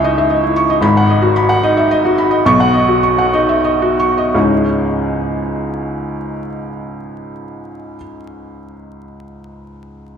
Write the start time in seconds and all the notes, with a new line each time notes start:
Already playing: C#2 E4 D#5 E5 C#6
0.04 D#4 D#5
0.18 E5
0.30 D#5
0.43 E4
0.56 C#6
0.70 D#5
0.81 G#1 G#2 B5
0.97 F#5
1.10 D#5
1.22 F#4
1.36 B5
1.49 F#5
1.63 D#4 D#5
1.77 E5
1.91 D#5
2.05 F#4
2.18 B5
2.31 D#5
2.46 B1 B2 C#6
2.60 F#5
2.74 D#5
2.89 F#4
3.03 C#6
3.18 F#5
3.33 D#4 D#5
3.49 E5
3.65 D#5
3.82 F#4
3.99 C#6
4.18 D#5
4.35 C#2 G#2 E3 G#3 C#4 D#4